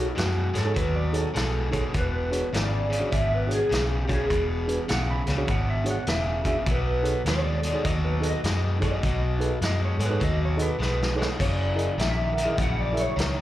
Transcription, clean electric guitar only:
Already playing: F#4
1.97 B4
2.54 D5
3.12 E5
3.34 B4
3.53 G#4
4.04 G4
4.12 G#4
6.71 B4
7.27 D5
7.84 D#5
8.04 B4
8.25 D#5
8.83 D#5
11.40 D5
12.00 E5
12.60 F#5
12.80 D5
12.99 C#5

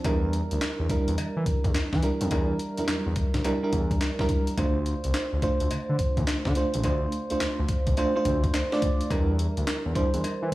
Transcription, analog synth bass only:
0.05 E2
0.52 D2
0.79 E2
1.08 E2
1.18 E3
1.36 E3
1.64 E2
1.93 E3
2.21 F2
2.31 E2
2.78 E2
2.88 E2
3.06 E2
3.34 D2
3.73 E2
4.58 D2
5.05 C2
5.33 D2
5.61 D2
5.71 D3
5.89 D3
6.17 D2
6.46 D3
6.74 A1
6.84 D2
7.31 D2
7.41 D2
7.59 D2
7.87 C2
8.25 D2
9.11 E2
9.57 D2
9.85 E2
10.14 E2
10.24 E3
10.42 E3

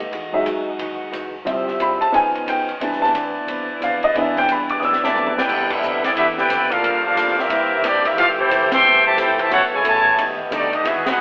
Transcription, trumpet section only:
5.03 G4 D5 E5 A5
5.36 E4 B4 D5 G5
5.70 D4 G4 B4 E5
6.04 B3 E4 G4 D5
6.16 D4 G4 B4 E5
6.38 E4 B4 D5 G5
6.70 D4 A4 A#4 F5
7.05 D4 A4 A#4 F5
7.38 C4 G4 A#4 E5
7.84 A#3 E4 G4 D5
8.06 C4 G4 A#4 E5
8.18 C4 G4 A4 F5
8.39 E4 A4 C5 G5
8.72 A4 E5 G5 C6
9.06 G4 C5 E5 A5
9.19 E4 A4 C5 G5
9.40 G4 C5 E5 A5
9.52 E4 A4 C#5 F#5
9.73 E4 A4 C#5 G#5
9.86 E4 C#5 G#5 A5
10.53 A3 D#4 G4 D5
10.74 A3 D4 G4 D#5
10.86 B3 F#4 G#4 E5
11.09 D#4 G#4 B4 F#5

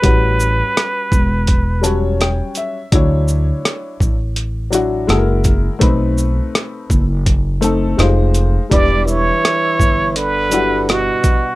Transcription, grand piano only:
0.02 G3 C#4 F#4 B4
1.81 F#3 G3 C#4 A5
1.86 C#5
2.21 G5
2.57 E5
2.92 F#3 D4 E4 C#5
4.70 F#3 D4 E4 F#4
5.07 G#3 E4 F#4 A4
5.17 A#4
5.79 A3 C4 D#4 B4
7.61 A3 C4 D#4 A4
7.97 G3 D#4 F4 C5
8.03 G#3
8.69 G3 D4 E4 B4
10.50 F#3 D4 E4 F#4
10.56 G3

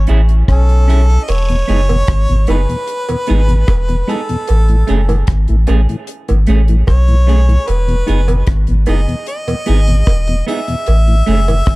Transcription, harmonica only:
0.52 A4
1.24 D#5
1.31 C#5
2.50 B4
4.10 A4
6.89 C#5
7.68 B4
8.88 D#5
9.28 D#5
10.48 E5

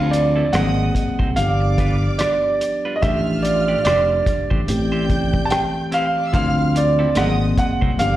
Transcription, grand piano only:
Already playing: F5
0.11 D5
0.53 F#5
1.36 F5
2.19 D5
2.96 D#5
3.02 E5
3.43 D5
3.85 D5
5.45 A5
5.51 G5
5.94 F5
6.34 F5
6.77 D5
7.18 F#5
7.59 F#5
7.99 F5

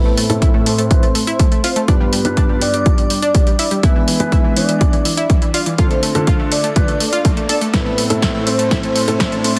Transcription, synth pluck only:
0.05 A3
0.17 A3
0.30 A3
0.42 E4
0.54 A3
0.66 A3
0.78 A3
1.03 A3
1.15 A3
1.27 E4
1.40 A3
1.52 A3
1.64 F4
1.76 A3
1.88 D4
2.00 G3
2.13 G3
2.25 G3
2.37 D4
2.49 G3
2.61 G3
2.74 G3
2.98 G3
3.10 G3
3.22 D4
3.35 G3
3.47 G3
3.59 E4
3.71 G3
3.83 E4
3.96 E3
4.08 E3
4.20 E3
4.32 E4
4.44 E3
4.57 E3
4.69 E3
4.93 E3
5.05 E3
5.17 E4
5.30 E3
5.42 E3
5.54 F4
5.66 E3
5.78 F4
5.91 A3
6.03 A3
6.15 A3
6.27 F4
6.39 A3
6.52 A3
6.64 A3
6.88 A3
7.00 A3
7.13 F4
7.25 A3
7.37 A3
7.49 A4
7.61 A3
7.74 E4
7.86 A3
7.98 A3
8.10 A3
8.22 E4
8.35 A3
8.47 A3
8.59 A3
8.71 E4
8.83 A3
8.95 A3
9.08 A3
9.20 E4
9.32 A3
9.44 A3

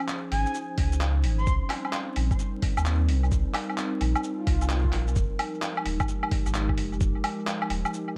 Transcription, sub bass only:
0.31 G#1
0.78 C#2
1.23 G#1
1.47 C2
2.16 A#1
2.77 D#2
3.09 C2
3.31 C2
4.01 A#1
4.47 C2
4.93 A#1
5.08 C2
5.16 F1
5.85 D#1
6.46 G#1
6.78 F1
7.01 F1
7.70 D#1

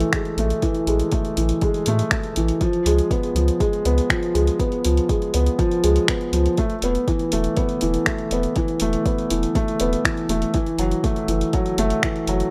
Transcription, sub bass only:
0.37 A1
0.87 A1
1.37 A1
1.87 A2
2.36 A1
2.86 C#2
3.35 C#2
3.85 C#2
4.35 C#2
4.85 C#2
5.34 C#2
5.84 C#2
6.32 C#2
6.82 E1
7.33 E1
7.83 E1
8.31 E1
8.81 E1
9.31 E1
9.80 E1
10.29 E1
10.78 F#1
11.28 F#1
11.78 F#1
12.27 F#1

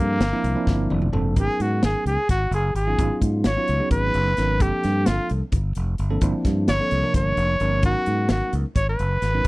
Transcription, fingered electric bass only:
Already playing: G2
0.20 G1
0.44 C2
0.67 G1
0.91 F1
1.14 F1
1.37 G#1
1.60 G#2
1.84 G#1
2.05 C#2
2.29 G#1
2.51 F#1
2.75 G#1
2.99 G#1
3.21 G#2
3.45 G#1
3.69 C#2
3.90 G#1
4.15 F#1
4.38 G#1
4.60 G1
4.85 G2
5.08 G1
5.31 C2
5.52 G1
5.77 F1
5.99 G1
6.21 G1
6.45 G2
6.69 G1
6.92 C2
7.14 G1
7.37 F1
7.61 G1
7.83 G#1
8.07 G#2
8.30 G#1
8.53 C#2
8.75 G#1
9.00 F#1
9.22 G#1
9.44 G#1

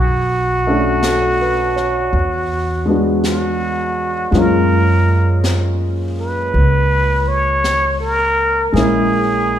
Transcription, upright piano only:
0.67 A3 C#4 D4
0.72 F#4
1.05 A4
1.41 B4
1.76 C#5
2.85 G#3 B3 D4
2.90 F#4
4.31 A#2 G#3
4.35 C#4 F4
8.72 G#3 A#3 C#4
8.77 E4

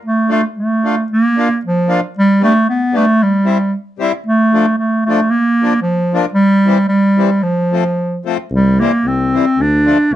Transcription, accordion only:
0.29 A3 D4 F4
0.84 A3 D4 F4
1.37 A#3 D4 F4
1.87 A#3 D4 F4
2.40 G3 B3 D4
2.93 G3 B3 D4
3.45 G3 C4 E4
3.99 G3 C4 E4
4.53 F3 A3 D4
5.08 F3 A3 D4
5.62 F3 A#3 D4
6.13 F3 A#3 D4
6.66 E3 G3 C4
7.17 E3 G3 C4
7.72 F3 A3 C4
8.25 F3 A3 C4
8.80 E3 G3 C4
9.33 E3 G3 C4
9.85 F3 A3 D4

